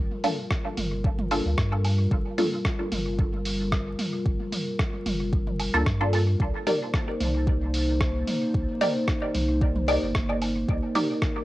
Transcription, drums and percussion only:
0.24 mid tom medium
0.24 open hi-hat medium
0.51 kick loud
0.51 cross-stick medium
0.77 mid tom loud
0.77 open hi-hat medium
1.04 kick loud
1.19 mid tom medium
1.31 open hi-hat medium
1.31 low woodblock medium
1.58 kick loud
1.58 cross-stick medium
1.72 low woodblock medium
1.85 open hi-hat medium
1.85 low woodblock medium
2.11 kick loud
2.38 mid tom medium
2.38 open hi-hat medium
2.65 kick loud
2.65 cross-stick medium
2.92 mid tom medium
2.92 open hi-hat medium
3.19 kick loud
3.45 open hi-hat medium
3.72 kick loud
3.72 cross-stick medium
3.99 mid tom medium
3.99 open hi-hat medium
4.26 kick loud
4.52 mid tom medium
4.52 open hi-hat medium
4.79 kick loud
4.79 cross-stick medium
5.06 mid tom medium
5.06 open hi-hat medium
5.33 kick loud
5.47 mid tom medium
5.60 open hi-hat medium
5.60 low woodblock medium
5.86 kick loud
5.86 cross-stick medium
6.01 low woodblock medium
6.13 open hi-hat medium
6.13 low woodblock medium
6.40 kick loud
6.67 mid tom medium
6.67 open hi-hat medium
6.93 kick loud
6.93 cross-stick medium
7.20 mid tom medium
7.20 open hi-hat medium
7.47 kick loud
7.74 open hi-hat medium
8.01 kick loud
8.01 cross-stick medium
8.27 mid tom medium
8.27 open hi-hat medium
8.54 kick loud
8.81 mid tom medium
8.81 open hi-hat medium
9.08 kick loud
9.08 cross-stick medium
9.35 mid tom medium
9.35 open hi-hat medium
9.61 kick loud
9.76 mid tom medium
9.88 open hi-hat medium
9.88 low woodblock medium
10.15 kick loud
10.15 cross-stick medium
10.29 low woodblock medium
10.42 open hi-hat medium
10.42 low woodblock medium
10.69 kick loud
10.95 mid tom medium
10.95 open hi-hat medium
11.22 kick loud
11.22 cross-stick medium

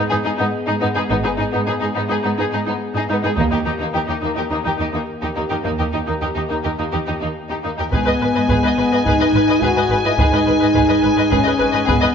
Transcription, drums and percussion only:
3.38 taiko medium
7.93 taiko medium
8.49 taiko medium
9.06 taiko medium
9.62 taiko medium
10.18 taiko medium
10.75 taiko medium
11.32 taiko medium
11.89 taiko medium

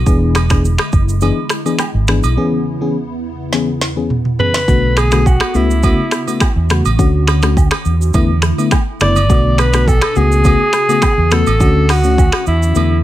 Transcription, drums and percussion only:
0.06 kick loud
0.06 shaker medium
0.35 finger snap medium
0.35 cross-stick medium
0.35 high agogo medium
0.35 shaker medium
0.50 finger snap medium
0.50 kick medium
0.50 cross-stick medium
0.50 shaker medium
0.65 shaker medium
0.78 finger snap medium
0.78 cross-stick loud
0.78 high agogo medium
0.92 kick loud
0.92 shaker medium
1.09 shaker medium
1.21 high agogo medium
1.21 shaker medium
1.49 finger snap medium
1.49 cross-stick medium
1.49 shaker medium
1.66 high agogo medium
1.66 shaker medium
1.79 finger snap medium
1.79 cross-stick medium
1.79 low woodblock medium
1.79 shaker medium
2.08 finger snap medium
2.08 cross-stick medium
2.08 shaker soft
2.23 high agogo medium
2.23 shaker medium
3.53 snare medium
3.81 snare medium
4.10 mid tom medium
4.25 mid tom medium
4.39 floor tom loud
4.54 snare medium
4.68 kick loud
4.68 shaker medium
4.97 finger snap medium
4.97 cross-stick medium
4.97 high agogo medium
4.97 shaker soft
5.12 finger snap medium
5.12 cross-stick medium
5.12 shaker medium
5.26 kick loud
5.26 low woodblock medium
5.26 shaker medium
5.40 finger snap medium
5.40 cross-stick loud
5.40 high agogo medium
5.54 shaker medium
5.71 shaker medium
5.83 kick loud
5.83 high agogo medium
5.83 shaker medium
6.11 finger snap medium
6.11 cross-stick medium
6.11 shaker medium
6.27 high agogo medium
6.27 shaker medium
6.40 finger snap medium
6.40 kick loud
6.40 cross-stick loud
6.40 low woodblock medium
6.40 shaker medium
6.70 finger snap medium
6.70 cross-stick loud
6.70 shaker soft
6.85 high agogo medium
6.85 shaker medium
6.99 kick loud
6.99 shaker medium
7.27 finger snap medium
7.27 cross-stick medium
7.27 high agogo medium
7.27 shaker medium
7.42 finger snap medium
7.42 cross-stick medium
7.42 shaker medium
7.57 kick loud
7.57 low woodblock medium
7.57 shaker medium
7.71 finger snap medium
7.71 cross-stick loud
7.71 high agogo medium
7.85 shaker medium
8.02 shaker medium
8.14 kick loud
8.14 high agogo medium
8.14 shaker medium
8.42 finger snap medium
8.42 cross-stick medium
8.42 shaker medium
8.58 high agogo medium
8.58 shaker medium
8.71 finger snap medium
8.71 kick loud
8.71 cross-stick loud
8.71 low woodblock medium
8.71 shaker medium
9.00 finger snap medium
9.00 cross-stick loud
9.00 shaker soft
9.16 high agogo medium
9.16 shaker medium
9.30 kick loud
9.30 shaker medium
9.58 finger snap medium
9.58 cross-stick medium
9.58 high agogo medium
9.58 shaker medium
9.73 finger snap medium
9.73 cross-stick medium
9.73 shaker medium
9.88 kick loud
9.88 low woodblock medium
9.88 shaker medium
10.01 finger snap medium
10.01 cross-stick loud
10.01 high agogo medium
10.16 shaker medium
10.32 shaker medium
10.44 kick loud
10.44 high agogo medium
10.44 shaker medium
10.73 finger snap medium
10.73 cross-stick medium
10.73 shaker medium
10.89 high agogo medium
10.89 shaker medium
11.02 finger snap medium
11.02 kick loud
11.02 cross-stick loud
11.02 low woodblock medium
11.02 shaker medium
11.31 finger snap medium
11.31 cross-stick medium
11.31 shaker soft
11.47 high agogo medium
11.47 shaker medium
11.60 kick loud
11.60 shaker medium
11.89 finger snap medium
11.89 cross-stick medium
11.89 open hi-hat medium
11.89 high agogo medium
11.89 shaker medium
12.04 shaker medium
12.18 kick loud
12.18 low woodblock medium
12.18 shaker medium
12.32 finger snap medium
12.32 cross-stick loud
12.32 high agogo medium
12.46 shaker medium
12.63 shaker medium
12.75 high agogo medium
12.75 shaker medium

